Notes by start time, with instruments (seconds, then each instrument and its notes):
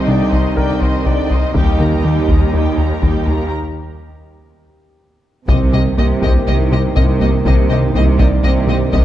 Already playing: cello section C2, trombone section D#3 D#4, analog synth pad G3 C4 D#4 D#5, grand piano C5
0.08 analog synth bass C3, viola section D3 D4, synth arpeggio sound G3, violin section D5 G5
0.31 analog synth bass C2, synth arpeggio sound C3, viola section D#3 D#4, violin section C5 D#5
0.57 analog synth bass C2, viola section D3 D4, synth arpeggio sound C4, grand piano A#4, violin section D5 G5
0.81 analog synth bass C2, viola section D#3 D#4, violin section C5 D#5
1.06 analog synth bass C2, synth arpeggio sound C3, viola section D3 D4, violin section D5 G5
1.30 analog synth bass C2, viola section D#3 D#4, violin section C5 D#5
1.55 analog synth bass D#2, cello section D#2, synth arpeggio sound D#3, trombone section G3 D#4, analog synth pad G3 A#3 D#4 D#5, viola section G3 D#4, violin section G4 G5, taiko
1.79 analog synth bass D#3, viola section D#3 G4, synth arpeggio sound A#3, grand piano G4, violin section A#4 A#5
2.05 analog synth bass D#3, viola section G3 D#4, synth arpeggio sound A#3, violin section G4 G5
2.29 analog synth bass D#2, synth arpeggio sound D#3, viola section D#3 G4, violin section A#4 A#5, taiko
2.53 analog synth bass D#2, viola section G3 D#4, synth arpeggio sound D#4, violin section G4 G5
2.78 analog synth bass D#2, viola section D#3 G4, violin section A#4 A#5
3.02 analog synth bass D#2, synth arpeggio sound D#3, viola section G3 D#4, violin section G4 G5, taiko
3.27 analog synth bass D#2, viola section D#3 G4, violin section A#4 A#5
5.48 tuba C2, analog synth bass C2, double bass section C2, trombone section G2 D#3, cello section C3, synth arpeggio sound C3, analog synth pad G3 A#3 D#4 C5, viola section A#3, french horn section C4 A#4, violin section G4 D#5, taiko
5.73 analog synth bass C3, synth arpeggio sound G3, viola section A#3, violin section G4 D#5
5.97 tuba C2, double bass section C2, analog synth bass C2, cello section C3, viola section A#3, synth arpeggio sound A#3, violin section G4 D#5
6.22 analog synth bass C2, synth arpeggio sound C3, viola section A#3, grand piano G4, violin section G4 D#5, taiko
6.47 double bass section C2, tuba C2, analog synth bass C2, cello section C3, viola section A#3, violin section G4 D#5
6.71 analog synth bass C3, synth arpeggio sound G3, viola section A#3, violin section G4 D#5
6.95 tuba C2, double bass section C2, analog synth bass C2, cello section C3, synth arpeggio sound C3, viola section A#3, violin section G4 D#5, taiko
7.20 analog synth bass C2, viola section A#3, synth arpeggio sound A#3, violin section G4 D#5
7.45 tuba C2, analog synth bass C2, double bass section C2, cello section C3, synth arpeggio sound C3, viola section A#3, violin section G4 D#5, taiko
7.70 analog synth bass C3, synth arpeggio sound G3, viola section A#3, violin section G4 D#5
7.94 analog synth bass C2, tuba C2, double bass section C2, cello section C3, synth arpeggio sound A#3, viola section A#3, violin section G4 D#5
8.18 analog synth bass C2, synth arpeggio sound C3, viola section A#3, violin section G4 D#5, grand piano D5, taiko
8.43 tuba C2, double bass section C2, analog synth bass C2, cello section C3, viola section A#3, violin section G4 D#5
8.67 analog synth bass C3, synth arpeggio sound G3, viola section A#3, violin section G4 D#5
8.92 double bass section C2, analog synth bass C2, tuba C2, synth arpeggio sound C3, cello section C3, viola section A#3, violin section G4 D#5, taiko